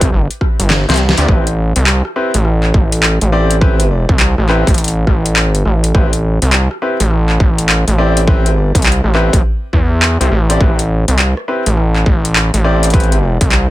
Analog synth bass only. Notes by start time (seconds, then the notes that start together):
0.01 C2
0.12 G1
0.60 G1
0.89 C2
1.18 D2
1.29 A1
1.76 C2
2.35 A1
2.74 A1
3.22 A1
4.09 C2
4.38 A1
4.67 A1
5.07 A1
5.66 A1
5.95 A1
6.42 C2
7.00 A1
7.40 A1
7.88 A1
8.48 G#1
8.75 C2
9.04 A1
9.33 A1
9.73 E2
10.21 C2
10.31 A1
10.61 A1
11.08 C2
11.67 A1
12.06 A1
12.54 A1
13.41 C2